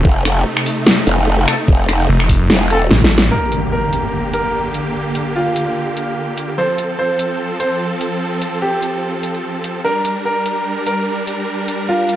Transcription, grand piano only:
3.31 A#4
3.72 A#4
4.33 A#4
5.36 F4
6.58 C5
6.99 C5
7.60 C5
8.62 G4
9.84 A#4
10.25 A#4
10.87 A#4
11.89 F4

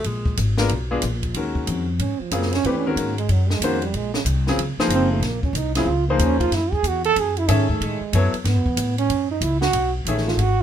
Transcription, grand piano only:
0.58 G#3 B3 D4 F4 A#4
0.91 G#3 B3 D4 F4 G#4
1.36 D#3 G#3 C#4 F#4 A#4
2.32 C#3 F#3 C4 F4 G#4
2.66 E3 A3 D4 G4 B4
2.86 D#3 G#3 C#4 F#4 A#4
3.64 D#3 G#3 C#4 F#4 C5
4.48 C#3 F#3 C4 F4 G#4
4.80 F3 A#3 D#4 G#4 C5
5.76 C#3 F#3 C4 F4 G#4
6.10 F3 A#3 D#4 G#4 C5
7.48 D#3 G#4 A4 C#5 E5
8.14 F#3 B3 E4 A4 C#5
10.08 D#3 A3 G#4 C#5 E5

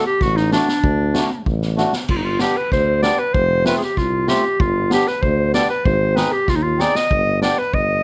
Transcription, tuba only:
0.21 A1
0.84 D2
1.46 A1
2.09 G1
2.72 D2
3.35 F1
3.97 C2
4.60 G1
5.23 D2
5.85 G#1
6.48 D#2
7.11 G1
7.74 G1

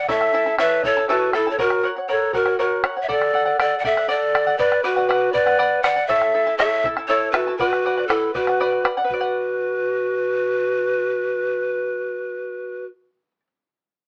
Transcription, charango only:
0.08 E4 A4 C#5 E5 A5
0.33 E4 A4 E5 A5
0.46 E4 A4 A5
0.58 E4 A4 C#5 E5 A5
0.84 E4 A4 E5 A5
0.97 E4 A4 A5
1.09 E4 A4 C#5 E5 A5
1.34 E4 A4 E5 A5
1.47 E4 A4 A5
1.59 A#4 C#5 F#5
1.83 A#4 C#5 F#5
1.96 C#5 F#5
2.08 A#4 C#5 F#5
2.33 A#4 C#5 F#5
2.46 C#5 F#5
2.59 A#4 C#5 F#5
2.83 A#4 C#5 F#5
2.97 C#5 F#5
3.08 A4 D5 F#5
3.33 A4 D5 F#5
3.46 D5 F#5
3.59 A4 D5 F#5
3.84 A4 D5 F#5
3.97 D5 F#5
4.08 A4 D5 F#5
4.34 A4 D5 F#5
4.47 D5 F#5
4.59 B4 D5 F#5
4.83 B4 D5 F#5
4.96 D5 F#5
5.08 B4 D5 F#5
5.33 B4 D5 F#5
5.46 D5 F#5
5.59 B4 D5 F#5
5.84 B4 D5 F#5
5.96 D5 F#5
6.09 E4 A4 C#5 E5 A5
6.34 E4 A4 E5 A5
6.47 E4 A4 A5
6.59 E4 A4 C#5 E5 A5
6.84 E4 A4 E5 A5
6.97 E4 A4 A5
7.09 E4 A4 C#5 E5 A5
7.34 E4 A4 E5 A5
7.47 E4 A4 A5
7.59 B4 D5 F#5
7.85 B4 D5 F#5
7.97 D5 F#5
8.09 B4 D5 F#5
8.34 B4 D5 F#5
8.48 D5 F#5
8.60 B4 D5 F#5
8.84 B4 D5 F#5
8.97 D5 F#5
9.04 B4
9.14 D5
9.21 F#5

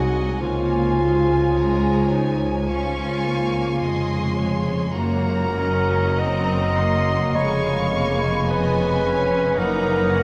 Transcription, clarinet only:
Already playing: F#4
0.41 F4
2.12 D#4
2.69 F4
4.96 A#4
6.20 D#5
7.35 C#5
8.50 B4
9.58 A#4

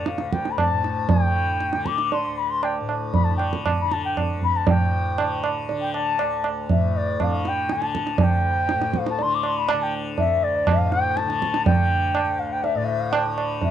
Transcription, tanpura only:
Already playing: D2 A2 D3
0.17 D2
0.70 A2
1.22 D3
1.76 D3
2.26 D2
2.80 A2
3.30 D3
3.83 D3
4.35 D2
4.67 A2
5.18 D3
5.71 D3
6.21 D2
6.72 A2
7.22 D3
7.74 D3
8.24 D2
8.74 A2
9.23 D3
9.74 D3
10.25 D2
10.76 A2
11.25 D3
11.75 D3
12.24 D2
12.75 A2
13.26 D3

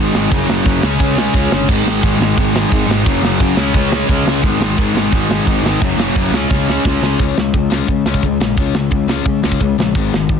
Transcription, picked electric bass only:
Already playing: G#1
0.14 G#1
0.31 F#1
0.49 F#1
0.66 F#1
0.83 C#2
0.99 C#2
1.34 C#2
1.52 G1
1.69 G#1
1.86 G#1
2.03 G#1
2.19 G#1
2.37 G#1
2.72 G#1
2.88 G#1
3.06 F#1
3.23 F#1
3.40 F#1
3.57 C#2
3.75 C#2
4.09 C#2
4.27 C#2
4.44 G#1
4.60 G#1
4.78 G#1
4.95 G#1
5.13 G#1
5.47 G#1
5.62 G#1
5.82 F#1
5.96 F#1
6.16 F#1
6.31 C#2
6.50 C#2
6.85 C#2
7.02 C#2
7.20 C#2
7.37 C#2
7.54 C#2
7.88 C#3
8.05 C#2
8.23 C#2
8.40 A#1
8.57 C#2
8.75 C#2
8.91 C#2
9.26 C#3
9.45 C#2
9.60 C#2
9.78 A#1
9.95 G#1
10.12 G#1
10.29 G#1

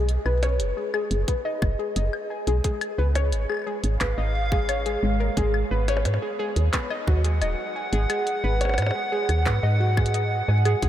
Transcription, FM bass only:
Already playing: B1
0.26 B1
0.60 F#1
1.11 F#1
1.62 F#1
1.96 F#1
2.47 B1
2.98 C#2
3.33 G#1
3.84 G#1
4.01 G#1
4.18 G#1
5.03 G#1
5.37 G#1
5.71 G#1
6.05 G#2
6.56 D#2
7.08 D#2
7.42 D#1
7.93 G#1
8.44 G#1
8.78 G#2
9.29 D#2
9.46 G#2
9.63 G#2
10.48 G#2
10.83 B1

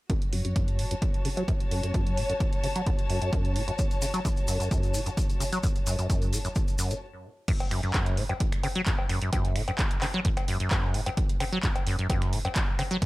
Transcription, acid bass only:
0.10 F#2
0.33 F#2
0.45 F#2
0.56 F#2
0.79 A2
0.91 F#2
1.25 C#3
1.37 F#3
1.48 F#2
1.71 F#2
1.83 F#2
1.94 F#2
2.17 A2
2.30 F#2
2.64 C#3
2.76 F#3
2.86 F#2
3.09 F#2
3.22 F#2
3.33 F#2
3.56 A2
3.68 F#2
4.02 C#3
4.14 F#3
4.25 F#2
4.48 F#2
4.60 F#2
4.71 F#2
4.94 A2
5.06 F#2
5.40 C#3
5.52 F#3
5.63 F#2
5.87 F#2
5.99 F#2
6.10 F#2
6.32 A2
6.45 F#2
6.79 F#2
6.91 B2
7.48 F#2
7.71 F#2
7.83 F#2
8.17 A2
8.30 F#2
8.64 C#3
8.76 F#3
8.87 F#2
9.10 F#2
9.22 F#2
9.33 F#2
9.56 A2
9.68 F#2
10.02 C#3
10.14 F#3
10.25 F#2
10.48 F#2
10.60 F#2
10.94 A2
11.06 F#2
11.40 C#3
11.52 F#3
11.63 F#2
11.87 F#2
11.99 F#2
12.10 F#2
12.33 A2
12.45 F#2
12.79 C#3
12.91 F#3
13.02 F#2

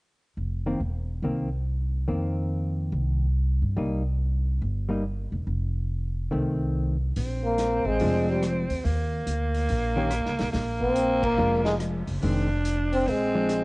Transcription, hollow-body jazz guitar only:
0.66 D#3 A#3 C4
1.24 D#3 A#3 C4
2.08 D#3 A#3 C4
3.77 G3 A#3 D#4
4.89 G3 A#3 D#4
6.31 D#3 A3 C4
8.01 F3 G#3 D4
9.96 D#3 A#3 C#4 G4
11.38 F3 G#3 D4
12.23 D#3 G#3 C4
13.35 F3 G#3 D4

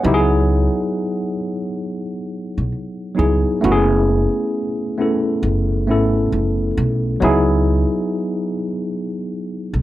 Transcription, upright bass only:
0.04 C#2
2.58 B1
3.19 C#2
3.64 F#1
5.43 F#1
5.88 G#1
6.32 F#1
6.77 B1
7.22 C#2
9.74 B1

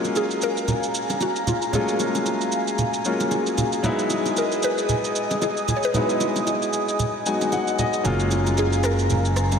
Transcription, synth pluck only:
0.17 G#4
0.43 A#4
1.22 F#4
1.48 F4
1.75 G#4
4.38 A#4
4.64 B4
5.43 G#4
5.77 C#5
5.85 B4
8.59 G#4
8.85 A#4

